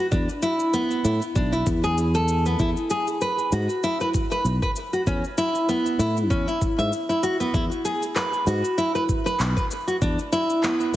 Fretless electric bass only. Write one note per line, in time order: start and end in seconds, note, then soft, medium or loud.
0.12 0.26 E2 medium
1.05 1.19 A2 medium
1.36 1.62 B1 medium
1.66 2.56 E2 medium
2.59 2.74 E2 medium
3.52 3.66 G#2 medium
4.45 4.59 B1 medium
5.07 5.21 E2 medium
5.99 6.31 A2 medium
6.31 6.45 E2 medium
6.78 6.90 G#2 medium
7.54 7.68 E2 medium
8.47 8.61 G#2 medium
9.40 9.54 B1 medium
10.02 10.16 E2 medium